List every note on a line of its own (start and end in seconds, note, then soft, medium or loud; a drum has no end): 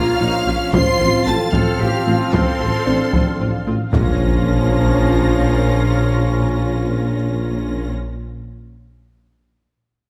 0.00 0.56 F3 loud
0.00 3.93 F3 medium
0.00 0.56 A#3 loud
0.00 0.74 A#3 medium
0.00 0.97 C#4 medium
0.00 0.20 F4 medium
0.00 0.74 F4 loud
0.00 3.92 F4 medium
0.00 0.76 G#4 medium
0.00 0.74 C#5 medium
0.00 0.97 C#5 medium
0.00 0.73 F5 loud
0.00 0.72 F6 loud
0.20 0.28 A#1 medium
0.20 0.31 A#1 medium
0.20 0.29 A#3 medium
0.20 0.47 D#4 medium
0.20 0.28 F4 medium
0.46 0.54 A#1 medium
0.46 0.58 A#1 medium
0.46 0.55 A#3 medium
0.46 0.73 C#4 medium
0.46 0.63 C#4 medium
0.46 0.55 F4 medium
0.72 0.80 A1 medium
0.72 0.84 A1 medium
0.72 3.63 F3 loud
0.72 0.90 F3 loud
0.72 3.63 C4 loud
0.72 0.82 C4 medium
0.72 3.94 C4 medium
0.72 1.52 F4 medium
0.72 0.82 F4 medium
0.72 1.28 C5 loud
0.72 3.93 F5 medium
0.72 1.27 C6 loud
0.72 1.26 C7 loud
0.72 taiko medium
1.00 1.08 A1 medium
1.00 1.11 A1 medium
1.00 1.09 C4 medium
1.00 2.57 C4 medium
1.00 1.09 F4 medium
1.00 1.17 F4 medium
1.00 2.57 C5 medium
1.26 1.35 A1 medium
1.26 1.38 A1 medium
1.26 1.43 C4 medium
1.26 1.35 C4 medium
1.26 1.35 F4 medium
1.26 1.54 A4 medium
1.26 1.54 A5 medium
1.26 1.53 A6 loud
1.53 1.61 A1 medium
1.53 1.65 A1 medium
1.53 1.70 F3 loud
1.53 1.62 C4 medium
1.53 2.34 F4 medium
1.53 1.62 F4 medium
1.53 1.80 A4 medium
1.53 2.32 F5 medium
1.53 2.34 F6 loud
1.53 taiko medium
1.80 1.88 A1 medium
1.80 1.92 A1 medium
1.80 1.88 C4 medium
1.80 1.88 F4 medium
1.80 2.07 G4 medium
2.06 2.14 A1 medium
2.06 2.18 A1 medium
2.06 2.23 A3 medium
2.06 2.15 C4 medium
2.06 2.15 F4 medium
2.06 2.33 F4 medium
2.33 2.41 A1 medium
2.33 2.45 A1 medium
2.33 2.50 F3 loud
2.33 2.41 C4 medium
2.33 3.67 C4 medium
2.33 2.41 F4 medium
2.33 3.54 A4 medium
2.33 3.67 C5 medium
2.33 3.67 C6 loud
2.33 taiko medium
2.60 2.69 A1 medium
2.60 2.72 A1 medium
2.60 2.68 C4 soft
2.60 2.76 F4 medium
2.60 2.68 F4 medium
2.86 2.95 A1 medium
2.86 2.99 A1 medium
2.86 2.95 C4 medium
2.86 3.03 C4 medium
2.86 3.89 D4 soft
2.86 2.95 F4 medium
2.86 3.89 D5 medium
3.13 3.22 A1 medium
3.13 3.25 A1 medium
3.13 3.30 F3 loud
3.13 3.23 C4 medium
3.13 3.22 F4 medium
3.13 taiko medium
3.39 3.47 A1 medium
3.39 3.51 A1 medium
3.39 3.48 C4 medium
3.39 3.49 F4 medium
3.67 3.77 A1 medium
3.67 3.75 A1 medium
3.67 3.83 A3 medium
3.67 3.75 C4 medium
3.67 3.75 F4 medium
3.93 7.89 A#1 medium
3.93 7.90 A#1 medium
3.93 7.90 A#2 medium
3.93 7.90 F3 medium
3.93 7.90 A#3 medium
3.93 7.90 C#4 medium
3.93 7.90 F4 medium
3.93 7.90 A#4 medium
3.93 7.90 F5 medium
3.93 7.89 A#6 medium
3.93 taiko loud
3.93 impact medium